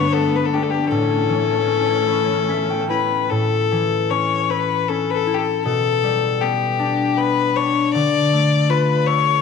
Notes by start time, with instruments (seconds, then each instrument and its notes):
Already playing: string section G2 A3 B3, harp G2 D3 B3 D4, fiddle C#5
0.13 harp B3, fiddle A4
0.35 fiddle B4
0.45 fiddle A4
0.53 harp D4, fiddle G4
0.62 fiddle A4
0.70 fiddle G4
0.89 harp A2, string section A2 E3 C#4, fiddle A4
1.29 harp E3
1.67 harp C#4
2.07 harp E4
2.48 harp C#4 E5
2.70 harp G5
2.90 harp E4, fiddle B4
3.24 fiddle B4
3.30 harp A2, fiddle A4
3.72 harp E3
4.10 harp C#4, fiddle C#5
4.50 harp E4, fiddle B4
4.88 harp C#4, fiddle A4
5.10 fiddle A4 B4
5.27 harp E4
5.34 fiddle G4 A4
5.65 harp B2, fiddle A4
6.04 harp G3
6.41 harp B3, fiddle G4
6.79 harp D4
7.17 harp B3, fiddle B4
7.56 harp D4, fiddle C#5
7.93 harp D3, fiddle D5
8.32 harp A3
8.69 harp F4, fiddle B4
9.07 harp A4, fiddle C#5